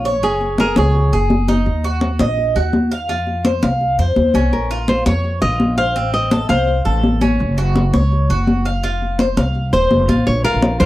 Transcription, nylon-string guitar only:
0, 0, Header, 1, 2, 480
1, 0, Start_track
1, 0, Tempo, 358637
1, 302, Time_signature, 4, 2, 24, 8
1, 14530, End_track
2, 0, Start_track
2, 0, Title_t, "Nylon-string guitar"
2, 0, Program_c, 0, 24
2, 0, Note_on_c, 0, 73, 91
2, 251, Note_off_c, 0, 73, 0
2, 313, Note_on_c, 0, 68, 84
2, 754, Note_off_c, 0, 68, 0
2, 804, Note_on_c, 0, 70, 89
2, 1040, Note_off_c, 0, 70, 0
2, 1048, Note_on_c, 0, 68, 71
2, 1941, Note_off_c, 0, 68, 0
2, 6061, Note_on_c, 0, 70, 74
2, 6507, Note_off_c, 0, 70, 0
2, 6542, Note_on_c, 0, 72, 85
2, 6765, Note_off_c, 0, 72, 0
2, 6779, Note_on_c, 0, 73, 87
2, 7226, Note_off_c, 0, 73, 0
2, 7249, Note_on_c, 0, 75, 93
2, 7701, Note_off_c, 0, 75, 0
2, 7731, Note_on_c, 0, 77, 96
2, 8182, Note_off_c, 0, 77, 0
2, 8213, Note_on_c, 0, 75, 98
2, 8687, Note_off_c, 0, 75, 0
2, 8692, Note_on_c, 0, 77, 84
2, 9603, Note_off_c, 0, 77, 0
2, 13020, Note_on_c, 0, 72, 89
2, 13736, Note_off_c, 0, 72, 0
2, 13741, Note_on_c, 0, 73, 108
2, 13973, Note_off_c, 0, 73, 0
2, 13978, Note_on_c, 0, 70, 95
2, 14426, Note_off_c, 0, 70, 0
2, 14452, Note_on_c, 0, 72, 103
2, 14530, Note_off_c, 0, 72, 0
2, 14530, End_track
0, 0, End_of_file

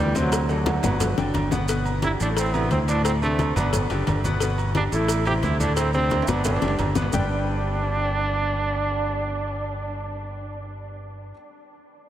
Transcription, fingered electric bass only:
0, 0, Header, 1, 2, 480
1, 0, Start_track
1, 0, Key_signature, 1, "major"
1, 0, Tempo, 340329
1, 458, Time_signature, 4, 2, 24, 8
1, 17053, End_track
2, 0, Start_track
2, 0, Title_t, "Fingered electric bass"
2, 0, Program_c, 0, 33
2, 0, Note_on_c, 0, 38, 96
2, 1100, Note_off_c, 0, 38, 0
2, 1180, Note_on_c, 0, 31, 95
2, 1626, Note_off_c, 0, 31, 0
2, 1660, Note_on_c, 0, 30, 78
2, 1883, Note_off_c, 0, 30, 0
2, 1905, Note_on_c, 0, 31, 90
2, 3022, Note_off_c, 0, 31, 0
2, 3110, Note_on_c, 0, 33, 103
2, 3775, Note_off_c, 0, 33, 0
2, 3825, Note_on_c, 0, 38, 95
2, 4943, Note_off_c, 0, 38, 0
2, 5022, Note_on_c, 0, 31, 102
2, 5468, Note_off_c, 0, 31, 0
2, 5499, Note_on_c, 0, 30, 83
2, 5723, Note_off_c, 0, 30, 0
2, 5746, Note_on_c, 0, 31, 89
2, 6863, Note_off_c, 0, 31, 0
2, 6941, Note_on_c, 0, 33, 94
2, 7610, Note_off_c, 0, 33, 0
2, 7660, Note_on_c, 0, 38, 100
2, 8779, Note_off_c, 0, 38, 0
2, 8857, Note_on_c, 0, 31, 97
2, 9304, Note_off_c, 0, 31, 0
2, 9335, Note_on_c, 0, 30, 83
2, 9560, Note_off_c, 0, 30, 0
2, 9576, Note_on_c, 0, 31, 90
2, 10001, Note_off_c, 0, 31, 0
2, 10056, Note_on_c, 0, 31, 89
2, 15954, Note_off_c, 0, 31, 0
2, 17053, End_track
0, 0, End_of_file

